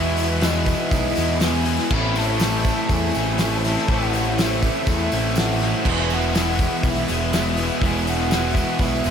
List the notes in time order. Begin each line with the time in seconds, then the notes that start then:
Already playing: E2 B2 E3 G#3 B3 E4 B4 E5 G#5 B5
0.16 G#3 B3 E4, open hi-hat, tambourine
0.41 E3 G#3 B3 E4 D#5, snare, open hi-hat, tambourine
0.66 E3 G#3 B3 E4, kick, open hi-hat, tambourine
0.91 B1 E3 G#3 B3 E4 D#5, kick, open hi-hat, tambourine
1.15 E2 G#3 B3 E4, open hi-hat, tambourine
1.40 E2 B2 E3 G#3 B3 E4, snare, open hi-hat, tambourine
1.44 G#5
1.65 E3 G#3 B3 E4, open hi-hat, tambourine
1.79 snare
1.90 A1 A2 E3 A3 C4 E4 A4 C5 B5, kick, crash, tambourine
2.15 A3 C4 E4 A5, open hi-hat, tambourine
2.39 E3 A3 C4 E4, snare, open hi-hat, tambourine
2.65 A3 C4 E4, kick, open hi-hat, tambourine
2.89 E2 E3 A3 C4 E4 G#5, kick, open hi-hat, tambourine
3.14 A1 A3 C4 E4, open hi-hat, tambourine
3.38 A2 E3 A3 C4, snare, open hi-hat, tambourine
3.43 E4 A5
3.64 A3 C4 E4, snare, open hi-hat, tambourine
3.78 snare
3.88 A1 A2 E3 A3 C4 E4 G#5, kick, open hi-hat, tambourine
3.93 F#5
4.13 A3 C4 E4, open hi-hat, tambourine
4.38 E3 A3 C4 E4, snare, open hi-hat, tambourine
4.42 E5
4.62 A3 C4 E4, kick, open hi-hat, tambourine
4.87 E2 E3 A3 C4 E4 E5, kick, open hi-hat, tambourine
5.12 A1 A3 C4 E4, open hi-hat, tambourine
5.36 A2 E3 A3 C4 F#5, snare, open hi-hat, tambourine
5.40 E4
5.60 A3 C4 E4, snare, open hi-hat, tambourine
5.85 E1 E2 B2 E3 G#3 E5 B5, kick, tambourine, crash
5.89 B3 E4 G#5
6.09 G#3 B3 E4, open hi-hat, tambourine
6.13 F#5
6.35 E3 G#3 B3 E4, snare, open hi-hat, tambourine
6.59 E3 G#3 B3 E4, kick, open hi-hat, tambourine
6.83 B1 E3 G#3 B3 E5, kick, open hi-hat, tambourine
6.88 E4
7.08 E1 G#3 B3 E4, open hi-hat, tambourine
7.33 E2 B2 E3 G#3 B3 E4 E5, snare, open hi-hat, tambourine
7.57 G#3 B3 E4, open hi-hat, tambourine
7.61 E3
7.82 E1 E2 B2 E3 G#3 B3 E4 C#6, kick, open hi-hat, tambourine
7.86 G#5
8.06 G#3 B3 E4 F#5, open hi-hat, tambourine
8.31 E3 G#3 B3 E4, snare, open hi-hat, tambourine
8.54 E3 G#3 B3 E4, kick, open hi-hat, tambourine
8.79 B1 E3 G#3 B3 E4 E5, kick, open hi-hat, tambourine
9.04 E1 G#3 B3 E4, open hi-hat, tambourine